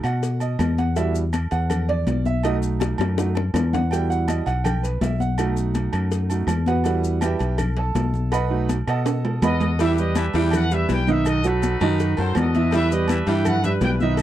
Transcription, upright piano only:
0.05 F#5
0.41 D#5
0.78 F#5
0.96 G3 E4 F#4 E5
1.52 F#5
1.89 D5
2.26 E5
2.44 A3 D#4 F#4 D#5
3.18 A3 D#4 F#4
3.73 F#5
3.91 G3 E4 F#4 G5
4.10 F#5
4.28 D#5
4.46 F#5
4.64 G5
4.83 B4
5.02 E5
5.20 F#5
5.38 A3 D#4 F#4
6.30 A3 D#4 F#4
6.67 F#4 B4 F#5
6.84 G3 E4 F#4
7.23 G4 B4 E5 G5
7.77 A4 A5
8.32 B4 D#5 F#5 B5
8.50 A3 D#4 F#4
8.88 A4 D#5 F#5 A5
9.43 B4 D#5 F#5 B5
9.80 E3 E4 E5
9.99 G3 G4 B4
10.35 E3 E4 E5
10.71 G3 G4 B4
11.08 D#3 D#4 D#5
11.44 F#3 F#4 A4
11.82 D#3 D#4 D#5
12.19 F#3 F#4 A4
12.55 E3 E4 E5
12.73 E3 E4 E5
12.91 G3 G4 B4
13.28 E3 E4 E5
13.64 G3 G4 B4
14.02 D#3 D#4 D#5

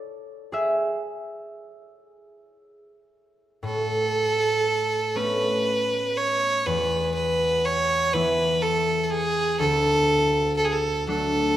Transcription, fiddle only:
3.65 A4
5.17 B4
6.17 C#5
6.66 B4
7.14 B4
7.65 C#5
8.13 B4
8.62 A4
9.03 A4
9.10 G#4
9.60 A4
10.57 A4
10.65 G#4
10.72 A4
11.09 A4

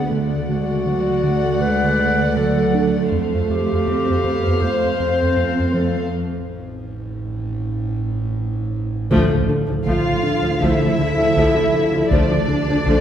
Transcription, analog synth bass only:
0.12 D3
0.49 D3
0.86 D3
1.23 D3
1.61 D3
1.99 D3
2.37 D3
2.74 D4
3.12 F2
3.49 F2
3.87 F2
4.24 F2
4.61 F2
5.00 F2
5.37 F2
5.74 F3
9.11 D3
9.49 D3
9.86 D3
10.23 D4
10.61 D3
10.98 D3
11.36 D3
11.74 D3
12.11 D3
12.49 D3
12.86 D3

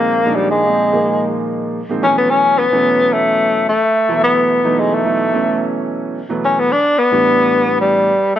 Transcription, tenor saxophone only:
Already playing: A#3
0.35 G3
0.51 G#3
2.03 C#4
2.18 B3
2.30 C#4
2.58 B3
3.13 A3
3.68 A3
4.24 B3
4.79 G#3
4.94 A3
6.45 C#4
6.59 B3
6.72 D4
6.98 B3
7.81 G3
8.36 A3

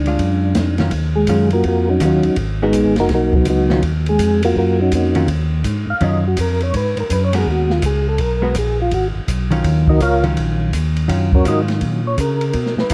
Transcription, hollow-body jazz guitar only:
0.07 G#3 D4 F4
0.80 D#3 F#3 C#4 F4
1.29 D#3 F#3 C#4 F4
2.01 D#3 F#3 C#4 F4
2.62 G#3 B3 F#4 A#4
3.70 D#3 F#3 C#4 F4
5.16 D#3 F#3 C#4 F4
6.01 D#3 F#3 C#4 F4
7.33 G#3 B3 F#4 A#4
8.42 G#3 B3 F#4 A#4
9.51 D#3 F#3 C#4 F4
10.24 D#3 F#3 C#4 F4
11.08 D#3 F#3 C#4 F4
11.44 D#3 F#3 C#4 F4
12.91 A#3

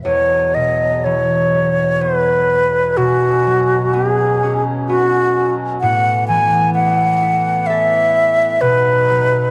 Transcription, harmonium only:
0.04 E2 B2 F#3
2.97 C#4
5.83 A2 E3 B3
8.60 B2 F#3 D#4

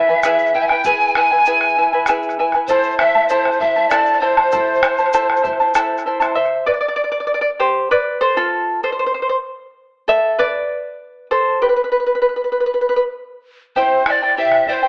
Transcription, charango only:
0.09 E4 B4 G#5
0.24 E4 G#4 B4 E5 G#5
0.54 E4 B4 E5 G#5
0.70 E4 B4 G#5
0.85 E4 G#4 B4 E5 G#5
1.16 E4 B4 E5 G#5
1.31 E4 B4 G#5
1.47 E4 G#4 B4 E5 G#5
1.78 E4 B4 E5 G#5
1.93 E4 B4 G#5
2.08 E4 G#4 B4 E5 G#5
2.39 E4 B4 E5 G#5
2.54 E4 B4 G#5
2.69 E4 A4 C5 E5 A5
3.00 E4 C5 E5 A5
3.15 E4 C5 A5
3.30 E4 A4 C5 E5 A5
3.61 E4 C5 E5 A5
3.76 E4 C5 A5
3.91 E4 A4 C5 E5 A5
4.22 E4 C5 E5 A5
4.37 E4 C5 A5
4.52 E4 A4 C5 E5 A5
4.83 E4 C5 E5 A5
4.98 E4 C5 A5
5.14 E4 A4 C5 E5 A5
5.43 E4 C5 E5 A5
5.60 E4 C5 A5
5.75 E4 A4 C5 E5 A5
6.06 E4 C5 E5 A5
6.20 E4 C5 A5
6.35 C5 E5
6.66 B4 D5
6.74 D5
6.81 D5
6.88 D5
6.96 D5
7.04 D5
7.12 D5
7.20 D5
7.27 D5
7.34 D5
7.41 D5
7.60 G4 C5
7.91 B4 D5
8.21 A4 C5
8.37 F4 A4
8.83 A4 C5
8.92 C5
8.99 C5
9.06 C5
9.14 C5
9.22 C5
9.29 C5
10.08 A4 E5
10.39 B4 D5
11.31 A4 C5
11.62 G4 B4
11.69 B4
11.76 B4
11.84 B4
11.92 B4
12.00 B4
12.07 B4
12.15 B4
12.22 B4
12.29 B4
12.36 B4
12.44 B4
12.52 B4
12.60 B4
12.66 B4
12.74 B4
12.81 B4
12.89 B4
12.96 B4
13.76 E4 G4 C5 E5 G5
14.06 E4 C5 E5 G5
14.22 E4 C5 G5
14.37 E4 G4 C5 E5 G5
14.67 E4 C5 E5 G5
14.83 E4 C5 G5

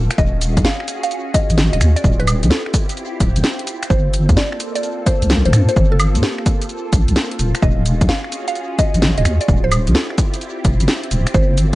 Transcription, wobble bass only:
0.18 D#1
0.57 D#2
1.50 G#1
1.73 D#1
1.81 D#2
2.04 D1
2.43 D2
3.20 D1
3.36 F1
3.90 G1
4.29 G2
5.22 C2
5.45 G1
5.53 G2
5.76 G1
6.15 G2
6.93 A#1
7.08 C2
7.39 D#1
7.63 D#1
8.01 D#2
8.94 G#1
9.17 D#1
9.25 D#2
9.48 D1
9.87 D2
10.65 F1
10.80 G1
11.11 D1
11.34 G1

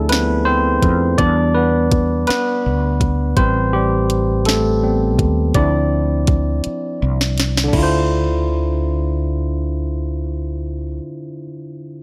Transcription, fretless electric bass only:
Already playing: D2
0.83 F2
1.20 E2
2.29 muted fretless electric bass stroke
2.66 D2
3.38 A1
5.20 D#2
5.56 D2
6.66 muted fretless electric bass stroke
7.02 C2
7.74 D2

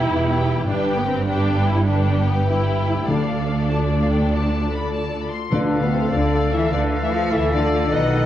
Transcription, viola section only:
Already playing: E4
0.67 D4
0.96 B3
1.06 C4
1.26 D4
1.66 E4
1.86 D4
2.26 B3
2.47 E4
3.08 D4
5.71 A3 A4
6.32 A3 A4
6.92 A3 A4
7.52 A3 A4
7.92 B3 A4
8.11 B3 A4

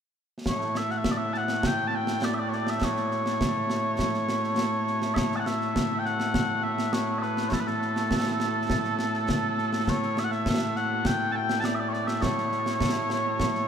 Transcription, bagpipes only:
0.48 A2 A3 C#5
0.77 E5
0.91 F#5
0.98 E5
1.11 D5
1.17 E5
1.33 A5
1.37 F#5
1.66 G5
1.87 A5
1.95 G5
2.24 D5
2.34 E5
2.39 D5
2.49 C#5
2.54 D5
2.70 E5
2.84 C#5
5.14 C#5 E5
5.36 F#5 A5
5.47 E5
5.99 G5
6.05 F#5
6.63 E5
6.93 C#5
7.18 B4 E5
7.49 A4 C#5
7.60 B4
7.67 A4
9.89 C#5
10.19 E5
10.24 F#5
10.31 E5
10.76 F#5
11.06 G5
11.32 G5 A5
11.60 A5
11.65 D5
11.75 E5
11.80 D5
11.88 C#5
11.93 D5
12.07 E5
12.22 C#5

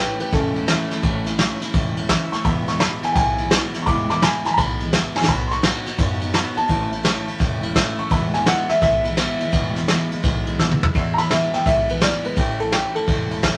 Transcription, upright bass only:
0.20 muted upright bass stroke
0.32 E1
0.91 muted upright bass stroke
1.03 A1
1.61 muted upright bass stroke
1.74 E1
2.32 muted upright bass stroke
2.45 E1
3.02 muted upright bass stroke
3.16 B1
3.73 muted upright bass stroke
3.87 E1
4.44 muted upright bass stroke
4.57 B1
5.15 muted upright bass stroke
5.28 B1
5.85 muted upright bass stroke
5.98 F#2
6.57 muted upright bass stroke
6.69 A1
7.27 muted upright bass stroke
7.40 E1
7.97 muted upright bass stroke
8.11 E1
8.69 muted upright bass stroke
8.82 B1
9.40 muted upright bass stroke
9.53 E1
10.11 muted upright bass stroke
10.24 B1
10.95 E2
11.53 muted upright bass stroke
11.66 B1
12.24 muted upright bass stroke
12.37 A1
12.95 muted upright bass stroke
13.08 E1

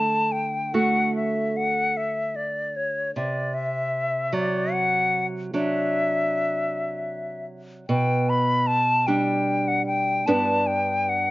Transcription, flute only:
Already playing: A5
0.32 G5
0.74 F#5
1.15 E5
1.57 F#5
1.97 E5
2.36 D5
2.76 C#5
3.15 D5
3.54 E5
4.34 D5
4.72 F#5
5.54 E5
7.89 G5
8.29 B5
8.67 A5
9.07 G5
9.68 F#5
9.86 G5
10.26 A5
10.67 G5
11.09 F#5

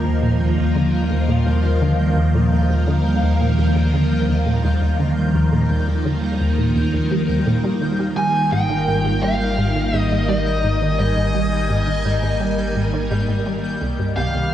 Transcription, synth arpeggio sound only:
0.05 D#2
0.22 A#2
0.40 D#2
0.57 D#2
0.75 D3
1.11 D#2
1.28 A#2
1.46 D#2
1.64 D#2
1.81 D3
2.16 D#2
2.34 A#2
2.52 D#2
2.70 D#2
2.87 D3
3.23 D#2
3.41 A#2
3.58 D#2
3.75 D#2
3.93 D3
4.29 D#2
4.46 A#2
4.64 D#2
4.81 D#2
4.99 D3
5.35 D#2
5.52 A#2
5.70 D#2
5.87 D#2
6.05 D3
6.41 D#2
6.58 A#2
6.76 D#2
6.93 D#2
7.11 G3
7.29 D#2
7.46 A#2
7.64 G3
7.81 D#3
7.99 G3
8.17 G3
8.52 G#2
8.70 D#3
8.87 G#2
9.05 G#2
9.23 G3
9.58 G#2
9.76 D#3
9.93 G#2
10.11 G#2
10.28 G3
10.64 G#2
10.82 D#3
10.99 G#2
11.17 G#2
11.34 G3
11.70 G#2
11.87 D#3
12.05 G#2
12.23 G#2
12.40 G3
12.76 G#2
12.93 D#3
13.11 G#2
13.29 G#2
13.46 G3
13.81 C2
13.99 G2
14.17 C2
14.34 C2

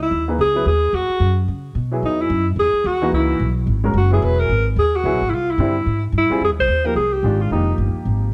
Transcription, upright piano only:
0.28 A#3 D#4 G#4 B4
0.55 F#3 B3 E4 B4
1.92 F#3 B3 E4 G#4
3.02 E3 A#3 D#4 F#4
3.84 G#3 C#4 F#4 A#4
4.11 F#3 B3 E4 G#4
5.04 F#3 B3 E4 G#4
5.59 D3 G3 C4 E4
6.30 G3 C4 F4 G#4
6.84 F3 A#3 D#4 G4
7.23 D#3 G#3 D4 F4
7.51 F3 A#3 D#4 G4

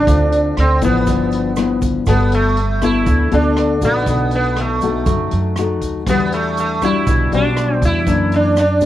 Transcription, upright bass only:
0.07 D2
0.58 D2
0.82 A1
1.07 G1
2.07 G1
3.07 D2
3.32 D2
3.82 A#1
4.06 B1
5.06 F#2
5.33 F#2
5.82 D#2
6.07 E2
7.07 B1
7.32 B1
7.82 E2
8.07 F#2

